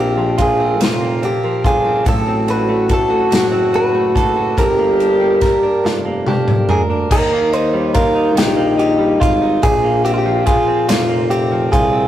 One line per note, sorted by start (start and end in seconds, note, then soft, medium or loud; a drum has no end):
0.00 0.82 A#1 loud
0.00 0.79 A#2 medium
0.00 0.79 F3 medium
0.00 1.00 A#3 medium
0.00 0.59 C4 medium
0.00 1.01 C4 medium
0.00 0.38 D4 medium
0.00 0.37 F4 medium
0.00 1.77 F4 loud
0.00 0.41 G4 medium
0.00 0.16 A#4 medium
0.17 1.43 F3 medium
0.17 0.59 A#4 medium
0.38 1.22 D4 medium
0.38 1.63 F4 medium
0.38 0.79 G#4 medium
0.38 kick medium
0.38 ride medium
0.59 1.22 C4 medium
0.59 0.80 A#4 medium
0.80 1.34 F1 medium
0.80 2.06 A#2 medium
0.80 2.05 F3 medium
0.80 1.25 F4 medium
0.80 1.42 A#4 medium
0.80 snare loud
0.80 ride medium
1.01 2.14 A#3 medium
1.01 2.26 C4 medium
1.22 1.85 C4 medium
1.22 1.64 D4 medium
1.22 1.66 G4 medium
1.22 ride soft
1.43 2.15 F3 medium
1.43 1.83 A#4 medium
1.64 2.04 G1 medium
1.64 2.29 D4 medium
1.64 2.15 F4 medium
1.64 2.04 G#4 medium
1.64 kick loud
1.64 ride medium
1.84 2.28 C4 medium
1.84 2.05 A#4 medium
2.05 3.28 A1 loud
2.05 3.30 A2 medium
2.05 3.29 F#3 medium
2.05 4.54 F#4 loud
2.05 2.67 A4 medium
2.05 2.50 A4 medium
2.05 kick loud
2.05 ride medium
2.26 3.51 C4 medium
2.47 2.88 D4 medium
2.47 3.09 F#4 medium
2.47 2.92 B4 medium
2.47 ride soft
2.68 3.93 A3 medium
2.68 3.08 A4 medium
2.88 3.73 D4 medium
2.88 4.14 A4 medium
2.88 kick medium
2.88 ride medium
2.93 3.35 A4 medium
3.10 3.72 F#4 medium
3.10 3.30 A4 medium
3.30 4.11 F#1 medium
3.30 4.57 A2 medium
3.30 4.56 F#3 medium
3.30 3.45 F#4 medium
3.30 3.93 A4 medium
3.30 snare loud
3.30 ride medium
3.52 4.66 C4 medium
3.73 4.14 D4 medium
3.73 4.35 F#4 medium
3.73 4.58 B4 medium
3.73 ride soft
3.94 4.66 A3 medium
3.94 4.34 A4 medium
4.15 4.55 F#1 medium
4.15 4.98 D4 medium
4.15 4.66 A4 medium
4.15 kick medium
4.15 ride medium
4.36 4.66 F#4 medium
4.36 4.57 A4 medium
4.57 5.54 G1 loud
4.57 5.83 G2 medium
4.57 7.70 G3 medium
4.57 6.43 G4 loud
4.57 5.20 A#4 medium
4.57 6.66 A#4 medium
4.57 kick loud
4.57 ride medium
4.78 6.04 A#3 medium
4.78 6.05 A#3 medium
4.99 5.40 D4 medium
4.99 5.62 D4 medium
4.99 ride soft
5.20 7.73 G3 medium
5.20 5.62 A#4 medium
5.41 6.26 D4 medium
5.41 6.69 A#4 medium
5.41 kick medium
5.41 snare soft
5.41 ride medium
5.63 6.27 D4 medium
5.63 5.83 A#4 medium
5.84 6.65 F1 medium
5.84 7.20 G2 medium
5.84 5.97 F4 medium
5.84 6.47 A#4 medium
5.84 snare medium
6.05 7.70 A#3 medium
6.05 7.32 A#3 medium
6.26 6.68 D4 medium
6.26 6.89 D4 medium
6.26 6.71 G4 medium
6.26 high tom medium
6.48 6.90 A#4 medium
6.48 mid tom medium
6.69 7.09 D2 medium
6.69 6.85 D4 medium
6.69 7.20 D4 medium
6.69 6.81 G#4 medium
6.69 7.94 A#4 medium
6.69 mid tom loud
6.90 7.20 D4 medium
6.90 7.70 A#4 medium
7.05 7.12 F4 medium
7.11 8.39 D#2 loud
7.11 8.34 D#3 medium
7.11 9.65 D#4 loud
7.11 7.53 A#4 loud
7.11 kick loud
7.11 crash loud
7.32 8.56 A#3 medium
7.53 8.14 D#4 medium
7.53 7.94 C5 loud
7.53 ride soft
7.74 8.97 G3 medium
7.94 9.20 F4 medium
7.94 8.34 A#4 medium
7.94 kick medium
7.94 ride medium
8.15 8.77 D#4 medium
8.35 9.23 A#1 loud
8.35 9.71 D#3 medium
8.35 8.77 G4 loud
8.35 snare loud
8.35 ride medium
8.56 9.84 A#3 medium
8.78 9.40 D#4 medium
8.78 9.21 G4 loud
8.78 ride soft
8.98 9.71 G3 medium
9.20 9.61 G#1 loud
9.20 10.46 F4 medium
9.20 9.33 F4 loud
9.20 kick loud
9.20 ride medium
9.42 9.72 D#4 medium
9.63 10.59 A#1 loud
9.63 10.88 A#2 medium
9.63 11.89 F4 loud
9.63 10.03 G#4 loud
9.63 kick loud
9.63 ride medium
9.84 11.08 A#3 medium
10.05 10.67 C4 medium
10.05 10.13 G4 loud
10.05 ride soft
10.14 10.18 F4 medium
10.18 10.46 G4 medium
10.26 11.50 F3 medium
10.46 11.71 F4 medium
10.46 10.88 G#4 medium
10.46 kick loud
10.46 ride medium
10.68 11.30 C4 medium
10.89 11.69 F1 loud
10.89 12.08 A#2 medium
10.89 11.30 F4 loud
10.89 snare loud
10.89 ride medium
11.09 12.08 A#3 medium
11.30 11.93 C4 medium
11.30 11.72 G4 medium
11.30 ride soft
11.52 12.08 F3 medium
11.72 12.08 C2 loud
11.72 12.08 F4 medium
11.72 12.08 G#4 loud
11.72 kick loud
11.72 ride medium
11.93 12.08 C4 medium